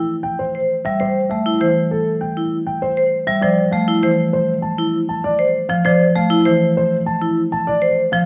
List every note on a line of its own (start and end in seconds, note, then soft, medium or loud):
0.00 0.14 E4 soft
0.23 0.43 G5 medium
0.39 0.59 C5 medium
0.55 0.74 C5 medium
0.85 1.05 G3 medium
0.85 1.04 E5 medium
1.00 1.19 C5 medium
1.00 1.20 C5 medium
1.29 1.50 A3 soft
1.29 1.50 E5 medium
1.46 1.65 E4 medium
1.61 1.80 E3 medium
1.61 1.80 C5 medium
1.91 2.11 A4 medium
2.21 2.41 G5 medium
2.37 2.56 E4 soft
2.66 2.86 G5 medium
2.82 3.01 C5 medium
2.97 3.17 C5 medium
3.27 3.47 G3 medium
3.27 3.47 E5 medium
3.41 3.62 F3 medium
3.41 3.62 C5 medium
3.41 3.62 D5 medium
3.71 3.92 A3 medium
3.71 3.92 F5 medium
3.88 4.07 E4 medium
4.03 4.23 E3 medium
4.03 4.23 C5 medium
4.33 4.53 C5 medium
4.62 4.83 A5 medium
4.78 4.98 E4 medium
5.09 5.29 A5 medium
5.24 5.44 D5 medium
5.39 5.59 C5 medium
5.69 5.84 F3 medium
5.69 5.89 F5 medium
5.85 6.05 F3 medium
5.85 6.04 C5 medium
5.85 6.04 D5 medium
6.16 6.35 A3 medium
6.16 6.35 F5 medium
6.30 6.50 E4 medium
6.45 6.65 E3 medium
6.45 6.65 C5 medium
6.77 6.96 C5 medium
7.06 7.26 A5 medium
7.21 7.41 E4 medium
7.52 7.71 A5 medium
7.67 7.86 D5 medium
7.82 8.01 C5 medium
8.12 8.26 F3 medium
8.12 8.26 F5 medium